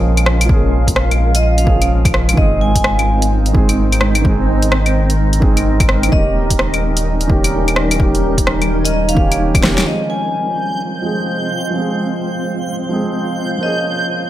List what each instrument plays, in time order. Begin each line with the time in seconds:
Already playing: sub bass A#1, upright piano F3 A#3 C#4 G#4, ambient pad G#3 C#4 F4 A#4 F5
0.17 closed hi-hat, claves
0.26 cross-stick
0.41 closed hi-hat, claves
0.46 upright piano F3 A#3, kick
0.51 upright piano C#4 G#4
0.87 kick, closed hi-hat
0.96 cross-stick
1.11 closed hi-hat, claves
1.35 vibraphone D#5, closed hi-hat
1.43 vibraphone D#5
1.58 vibraphone F5, closed hi-hat
1.64 upright piano F3 A#3 C#4, kick
1.69 upright piano G#4
1.82 closed hi-hat, claves
2.05 kick, closed hi-hat, claves
2.14 cross-stick
2.29 closed hi-hat, claves
2.34 upright piano D#3 G#3, vibraphone D#5, kick
2.38 sub bass G#1, ambient pad C4 D#4 C5 D#5, upright piano C4 G#4
2.61 vibraphone G#5
2.75 kick, closed hi-hat
2.84 cross-stick
2.99 closed hi-hat, claves
3.22 closed hi-hat
3.46 closed hi-hat
3.53 upright piano D#3 G#3 C4 G#4, kick
3.69 closed hi-hat, claves
3.92 closed hi-hat, claves
4.01 cross-stick
4.15 closed hi-hat, claves
4.22 upright piano D#3 G#3, ambient pad A#4, kick
4.27 upright piano C4 G#4
4.62 closed hi-hat
4.72 cross-stick
4.86 closed hi-hat, claves
5.10 closed hi-hat
5.33 closed hi-hat
5.40 upright piano D#3 G#3 C4, kick
5.44 upright piano G#4
5.57 closed hi-hat, claves
5.80 kick, closed hi-hat, claves
5.89 cross-stick
6.03 closed hi-hat, claves
6.09 sub bass D#1, upright piano D#3 A#3, ambient pad G3 C#4 D#4, vibraphone D#5, kick
6.14 upright piano C#4 G4
6.51 kick, closed hi-hat
6.59 cross-stick
6.74 closed hi-hat, claves
6.97 closed hi-hat
7.21 closed hi-hat
7.27 upright piano D#3 A#3 C#4 G4, kick
7.44 closed hi-hat, claves
7.68 closed hi-hat, claves
7.76 cross-stick
7.91 closed hi-hat, claves
7.96 upright piano D#3 A#3
8.00 upright piano C#4 G4, ambient pad C#5, kick
8.15 closed hi-hat
8.38 kick, closed hi-hat
8.47 cross-stick
8.62 closed hi-hat, claves
8.85 vibraphone D#5, closed hi-hat
8.94 vibraphone D#5
9.09 vibraphone F5, closed hi-hat
9.15 upright piano D#3 A#3 C#4 G4, kick
9.32 closed hi-hat, claves
9.55 kick, closed hi-hat, claves
9.61 upright piano D#3 A#3 C#4, cross-stick, snare
9.65 upright piano G4
9.78 snare, closed hi-hat, claves
9.82 upright piano F3 G#3, ambient pad G#3 C5
9.87 ambient pad C4 F4 F5, upright piano C4 G#4, vibraphone D#5, synth texture G6
10.10 vibraphone G#5
11.02 upright piano F3 G#3 C4
11.06 upright piano G#4
11.70 upright piano F3 G#3
11.76 upright piano C4 G#4
12.89 upright piano F3 G#3 C4
12.93 upright piano G#4
13.57 upright piano F3 A#3
13.63 ambient pad C#4 A#4, upright piano C#4 G#4, vibraphone D#5